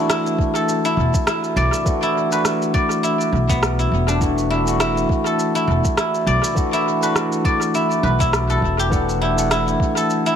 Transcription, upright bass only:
0, 0, Header, 1, 2, 480
1, 0, Start_track
1, 0, Tempo, 588235
1, 1516, Time_signature, 4, 2, 24, 8
1, 8451, End_track
2, 0, Start_track
2, 0, Title_t, "Upright bass"
2, 0, Program_c, 0, 32
2, 791, Note_on_c, 0, 28, 82
2, 880, Note_off_c, 0, 28, 0
2, 1274, Note_on_c, 0, 35, 86
2, 1361, Note_off_c, 0, 35, 0
2, 2713, Note_on_c, 0, 35, 88
2, 3134, Note_off_c, 0, 35, 0
2, 3195, Note_on_c, 0, 28, 78
2, 4096, Note_off_c, 0, 28, 0
2, 4631, Note_on_c, 0, 28, 91
2, 4720, Note_off_c, 0, 28, 0
2, 5112, Note_on_c, 0, 35, 89
2, 5201, Note_off_c, 0, 35, 0
2, 6553, Note_on_c, 0, 35, 84
2, 6974, Note_off_c, 0, 35, 0
2, 7034, Note_on_c, 0, 28, 70
2, 7935, Note_off_c, 0, 28, 0
2, 8451, End_track
0, 0, End_of_file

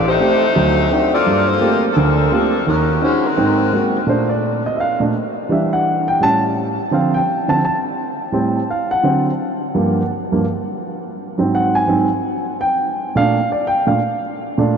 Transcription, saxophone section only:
0, 0, Header, 1, 2, 480
1, 0, Start_track
1, 0, Key_signature, -2, "major"
1, 0, Tempo, 353565
1, 1700, Time_signature, 4, 2, 24, 8
1, 20057, End_track
2, 0, Start_track
2, 0, Title_t, "Saxophone section"
2, 0, Program_c, 0, 65
2, 112, Note_on_c, 0, 63, 96
2, 113, Note_on_c, 0, 67, 74
2, 116, Note_on_c, 0, 57, 97
2, 116, Note_on_c, 0, 72, 113
2, 712, Note_off_c, 0, 67, 0
2, 1478, Note_off_c, 0, 63, 0
2, 1480, Note_off_c, 0, 57, 0
2, 1480, Note_off_c, 0, 72, 0
2, 1544, Note_on_c, 0, 69, 90
2, 1546, Note_on_c, 0, 58, 85
2, 1549, Note_on_c, 0, 74, 99
2, 1551, Note_on_c, 0, 65, 96
2, 2004, Note_off_c, 0, 69, 0
2, 2006, Note_off_c, 0, 65, 0
2, 2008, Note_off_c, 0, 58, 0
2, 2012, Note_off_c, 0, 74, 0
2, 2016, Note_on_c, 0, 72, 99
2, 2021, Note_on_c, 0, 69, 81
2, 2022, Note_on_c, 0, 65, 87
2, 2024, Note_on_c, 0, 58, 78
2, 2485, Note_off_c, 0, 72, 0
2, 2487, Note_off_c, 0, 69, 0
2, 2488, Note_off_c, 0, 65, 0
2, 2489, Note_off_c, 0, 58, 0
2, 2598, Note_on_c, 0, 69, 66
2, 2663, Note_off_c, 0, 69, 0
2, 2676, Note_on_c, 0, 53, 79
2, 2676, Note_on_c, 0, 70, 86
2, 2679, Note_on_c, 0, 62, 71
2, 2680, Note_on_c, 0, 69, 77
2, 3144, Note_off_c, 0, 70, 0
2, 3145, Note_off_c, 0, 53, 0
2, 3146, Note_off_c, 0, 62, 0
2, 3147, Note_off_c, 0, 69, 0
2, 3163, Note_on_c, 0, 53, 69
2, 3164, Note_on_c, 0, 69, 85
2, 3165, Note_on_c, 0, 58, 74
2, 3169, Note_on_c, 0, 62, 72
2, 3628, Note_off_c, 0, 53, 0
2, 3628, Note_off_c, 0, 58, 0
2, 3628, Note_off_c, 0, 69, 0
2, 3630, Note_off_c, 0, 62, 0
2, 3639, Note_on_c, 0, 70, 83
2, 3642, Note_on_c, 0, 61, 67
2, 3643, Note_on_c, 0, 63, 71
2, 3644, Note_on_c, 0, 54, 70
2, 4072, Note_off_c, 0, 70, 0
2, 4074, Note_off_c, 0, 61, 0
2, 4074, Note_off_c, 0, 63, 0
2, 4075, Note_off_c, 0, 54, 0
2, 4126, Note_on_c, 0, 65, 68
2, 4127, Note_on_c, 0, 56, 76
2, 4130, Note_on_c, 0, 61, 77
2, 4132, Note_on_c, 0, 72, 74
2, 4387, Note_off_c, 0, 65, 0
2, 4388, Note_off_c, 0, 56, 0
2, 4390, Note_off_c, 0, 61, 0
2, 4390, Note_off_c, 0, 72, 0
2, 4432, Note_on_c, 0, 54, 68
2, 4432, Note_on_c, 0, 63, 66
2, 4434, Note_on_c, 0, 60, 65
2, 4436, Note_on_c, 0, 70, 81
2, 5369, Note_off_c, 0, 54, 0
2, 5369, Note_off_c, 0, 63, 0
2, 5370, Note_off_c, 0, 60, 0
2, 5371, Note_off_c, 0, 70, 0
2, 20057, End_track
0, 0, End_of_file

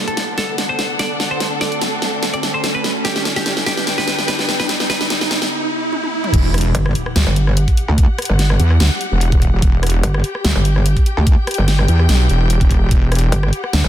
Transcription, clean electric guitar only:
0, 0, Header, 1, 2, 480
1, 0, Start_track
1, 0, Key_signature, 1, "minor"
1, 0, Tempo, 410959
1, 1640, Time_signature, 4, 2, 24, 8
1, 16217, End_track
2, 0, Start_track
2, 0, Title_t, "Clean electric guitar"
2, 0, Program_c, 0, 27
2, 90, Note_on_c, 0, 69, 91
2, 283, Note_off_c, 0, 69, 0
2, 442, Note_on_c, 0, 69, 93
2, 641, Note_off_c, 0, 69, 0
2, 810, Note_on_c, 0, 72, 92
2, 1003, Note_off_c, 0, 72, 0
2, 1162, Note_on_c, 0, 74, 91
2, 1361, Note_off_c, 0, 74, 0
2, 1530, Note_on_c, 0, 72, 92
2, 1723, Note_off_c, 0, 72, 0
2, 1881, Note_on_c, 0, 74, 96
2, 2081, Note_off_c, 0, 74, 0
2, 2729, Note_on_c, 0, 74, 88
2, 2852, Note_off_c, 0, 74, 0
2, 2968, Note_on_c, 0, 72, 89
2, 3092, Note_off_c, 0, 72, 0
2, 3208, Note_on_c, 0, 71, 98
2, 3402, Note_off_c, 0, 71, 0
2, 3560, Note_on_c, 0, 67, 98
2, 3760, Note_off_c, 0, 67, 0
2, 3929, Note_on_c, 0, 67, 92
2, 4123, Note_off_c, 0, 67, 0
2, 4281, Note_on_c, 0, 67, 92
2, 4481, Note_off_c, 0, 67, 0
2, 4649, Note_on_c, 0, 71, 94
2, 4843, Note_off_c, 0, 71, 0
2, 5001, Note_on_c, 0, 71, 94
2, 5201, Note_off_c, 0, 71, 0
2, 5369, Note_on_c, 0, 71, 97
2, 5563, Note_off_c, 0, 71, 0
2, 5720, Note_on_c, 0, 71, 98
2, 5920, Note_off_c, 0, 71, 0
2, 16217, End_track
0, 0, End_of_file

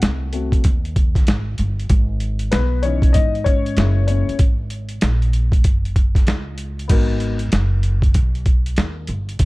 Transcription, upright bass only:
0, 0, Header, 1, 3, 480
1, 0, Start_track
1, 0, Key_signature, 5, "minor"
1, 0, Tempo, 625000
1, 1456, Time_signature, 4, 2, 24, 8
1, 7258, End_track
2, 0, Start_track
2, 0, Title_t, "Upright bass"
2, 0, Program_c, 0, 32
2, 21, Note_on_c, 0, 36, 88
2, 474, Note_off_c, 0, 36, 0
2, 502, Note_on_c, 0, 39, 85
2, 955, Note_off_c, 0, 39, 0
2, 985, Note_on_c, 0, 32, 90
2, 1209, Note_off_c, 0, 32, 0
2, 1222, Note_on_c, 0, 31, 83
2, 1447, Note_off_c, 0, 31, 0
2, 1459, Note_on_c, 0, 32, 101
2, 1914, Note_off_c, 0, 32, 0
2, 1944, Note_on_c, 0, 35, 86
2, 2396, Note_off_c, 0, 35, 0
2, 2420, Note_on_c, 0, 44, 88
2, 2874, Note_off_c, 0, 44, 0
2, 2897, Note_on_c, 0, 30, 106
2, 3270, Note_off_c, 0, 30, 0
2, 3376, Note_on_c, 0, 32, 82
2, 3832, Note_off_c, 0, 32, 0
2, 3862, Note_on_c, 0, 34, 90
2, 4336, Note_off_c, 0, 34, 0
2, 4336, Note_on_c, 0, 30, 94
2, 4792, Note_off_c, 0, 30, 0
2, 4816, Note_on_c, 0, 37, 88
2, 5272, Note_off_c, 0, 37, 0
2, 5301, Note_on_c, 0, 32, 96
2, 5755, Note_off_c, 0, 32, 0
2, 5782, Note_on_c, 0, 30, 87
2, 6235, Note_off_c, 0, 30, 0
2, 6258, Note_on_c, 0, 35, 85
2, 6713, Note_off_c, 0, 35, 0
2, 6741, Note_on_c, 0, 39, 88
2, 6967, Note_off_c, 0, 39, 0
2, 6977, Note_on_c, 0, 31, 83
2, 7205, Note_off_c, 0, 31, 0
2, 7217, Note_on_c, 0, 32, 88
2, 7258, Note_off_c, 0, 32, 0
2, 7258, End_track
3, 0, Start_track
3, 0, Title_t, "Muted upright bass strokes"
3, 3291, Note_on_c, 9, 29, 48
3, 3368, Note_off_c, 9, 29, 0
3, 7258, End_track
0, 0, End_of_file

